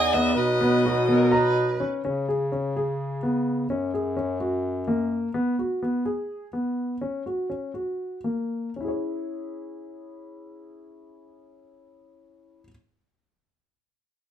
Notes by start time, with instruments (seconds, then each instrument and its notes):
Already playing: bass clarinet E2, woodwind section E3 D#4 G#4, viola D#5, violin G#5
0.13 grand piano B3, violin E5
0.36 bass clarinet B2, woodwind section F#3 B3, viola B4, violin D#5
0.61 grand piano B3
0.86 grand piano F#4
1.08 grand piano B3, viola A#4
1.32 viola B4, grand piano A#5
1.80 grand piano C#4
2.04 bass clarinet C#3, grand piano C#4
2.28 grand piano G#4
2.52 grand piano C#4
2.76 grand piano G#4
3.23 grand piano B3
3.69 bass clarinet F#2, grand piano C#4
3.94 grand piano G#4
4.17 grand piano C#4
4.40 grand piano F#4
4.88 grand piano A#3
5.34 grand piano B3
5.59 grand piano F#4
5.83 grand piano B3
6.05 grand piano G#4
6.53 grand piano B3
7.01 grand piano C#4
7.26 grand piano F#4
7.50 grand piano C#4
7.74 grand piano F#4
8.24 grand piano A#3
8.76 grand piano C#4
8.80 grand piano E4 G#4
8.88 grand piano C#5